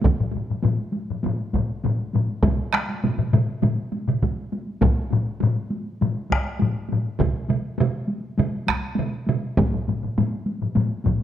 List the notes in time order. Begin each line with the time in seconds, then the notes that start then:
0.02 taiko, taiko low-mid, taiko high
0.17 taiko low-mid, taiko high
0.32 taiko low-mid, taiko high
0.50 taiko low-mid
0.63 taiko low-mid, taiko high
0.77 taiko high
0.92 taiko high
1.08 taiko low-mid, taiko high
1.23 taiko low-mid, taiko high
1.39 taiko high
1.53 taiko, taiko low-mid, taiko high
1.68 taiko high
1.84 taiko low-mid, taiko high
1.99 taiko high
2.13 taiko low-mid, taiko high
2.29 taiko high
2.43 taiko, taiko low-mid, taiko mid, taiko high
2.58 taiko high
2.73 taiko rim, taiko high
2.89 taiko high
3.04 taiko low-mid, taiko mid, taiko high
3.18 taiko low-mid, taiko mid, taiko high
3.33 taiko low-mid, taiko mid, taiko high
3.49 taiko high
3.62 taiko low-mid, taiko mid, taiko high
3.77 taiko high
3.92 taiko high
4.07 taiko low-mid, taiko mid, taiko high
4.23 taiko, taiko high
4.37 taiko high
4.52 taiko high
4.67 taiko high
4.81 taiko, taiko low-mid, taiko high
4.96 taiko high
5.11 taiko low-mid, taiko high
5.41 taiko low-mid, taiko high
5.56 taiko high
5.70 taiko high
5.85 taiko high
6.01 taiko low-mid, taiko high
6.16 taiko high
6.30 taiko rim, taiko, taiko high
6.45 taiko high
6.60 taiko low-mid, taiko high
6.74 taiko high
6.89 taiko low-mid, taiko high
7.04 taiko high
7.19 taiko, taiko mid, taiko high
7.34 taiko high
7.49 taiko mid, taiko high
7.78 taiko mid, taiko high
8.07 taiko high
8.23 taiko high
8.38 taiko mid, taiko high
8.53 taiko high
8.67 taiko rim, taiko, taiko high
8.82 taiko high
8.96 taiko mid, taiko high
9.12 taiko high
9.27 taiko mid, taiko high
9.43 taiko high
9.58 taiko, taiko low-mid, taiko high
9.74 taiko low-mid, taiko high
9.88 taiko low-mid, taiko high
10.03 taiko low-mid
10.18 taiko low-mid, taiko high
10.32 taiko high
10.46 taiko high
10.62 taiko low-mid, taiko high
10.75 taiko low-mid, taiko high
10.90 taiko high
11.04 taiko, taiko low-mid, taiko high
11.19 taiko high